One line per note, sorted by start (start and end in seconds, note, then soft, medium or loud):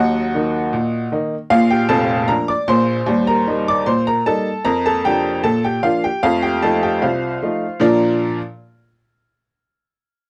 0.00 0.27 D#2 loud
0.00 0.17 F#3 medium
0.00 1.08 F#4 medium
0.00 1.08 D#5 medium
0.00 1.11 F#5 loud
0.34 0.55 D#3 medium
0.34 0.56 A#3 medium
0.34 0.56 D#4 medium
0.73 1.06 A#2 medium
1.12 1.33 D#3 medium
1.12 1.34 A#3 medium
1.12 1.34 D#4 medium
1.50 1.82 A#1 loud
1.50 1.82 A#2 medium
1.50 1.69 F4 medium
1.50 1.70 F5 loud
1.71 1.89 G4 medium
1.71 1.90 G5 loud
1.89 2.21 F1 loud
1.89 2.21 F2 loud
1.89 2.26 A4 medium
1.89 2.29 A5 loud
2.28 2.50 F3 medium
2.28 2.50 A#3 medium
2.28 2.50 D4 medium
2.28 2.47 A#4 medium
2.28 2.48 A#5 loud
2.48 2.68 D5 medium
2.48 2.68 D6 loud
2.68 3.00 A#1 loud
2.68 2.99 A#2 loud
2.68 3.24 C5 loud
2.68 3.27 C6 loud
3.06 3.40 D#2 loud
3.06 3.30 G3 medium
3.27 3.65 A#4 medium
3.27 3.67 A#5 loud
3.47 3.69 G3 medium
3.47 3.69 A#3 medium
3.47 3.69 D#4 medium
3.68 3.87 D5 medium
3.68 3.87 D6 loud
3.86 4.20 A#2 medium
3.86 4.05 C5 medium
3.86 4.06 C6 loud
4.07 4.25 A#4 medium
4.07 4.26 A#5 loud
4.26 4.48 G3 medium
4.26 4.48 A#3 medium
4.26 4.48 D#4 medium
4.26 4.63 A4 medium
4.26 4.65 A5 loud
4.65 4.98 F2 loud
4.65 4.84 A#4 loud
4.65 4.84 A#5 loud
4.86 5.04 A4 medium
4.86 5.05 A5 loud
5.05 5.27 F3 medium
5.05 5.27 A#3 medium
5.05 5.27 D4 medium
5.05 5.42 G4 medium
5.05 5.44 G5 loud
5.44 5.77 A#2 medium
5.44 5.63 A4 medium
5.44 5.63 A5 loud
5.65 5.83 G4 medium
5.65 5.84 G5 medium
5.83 6.05 F3 medium
5.83 6.05 A#3 medium
5.83 6.05 D4 medium
5.83 6.02 F4 medium
5.83 6.03 F5 loud
6.04 6.22 G4 medium
6.04 6.23 G5 medium
6.23 6.57 F2 loud
6.23 6.46 A3 medium
6.23 6.42 F4 medium
6.23 6.43 F5 loud
6.43 6.62 G4 medium
6.43 6.62 G5 medium
6.62 6.84 F3 medium
6.62 6.85 A3 medium
6.62 6.85 D#4 medium
6.62 6.82 A4 medium
6.62 6.82 A5 loud
6.83 7.01 G4 medium
6.83 7.02 G5 medium
7.02 7.36 C2 medium
7.02 7.78 F4 medium
7.02 7.78 C5 medium
7.02 7.81 F5 medium
7.42 7.64 F3 medium
7.42 7.64 A3 medium
7.42 7.65 D#4 medium
7.80 8.24 A#2 loud
7.80 8.25 F3 loud
7.80 8.25 D4 loud
7.80 8.25 F4 loud
7.80 8.25 A#4 loud
7.80 8.25 D5 loud
7.80 8.25 A#5 medium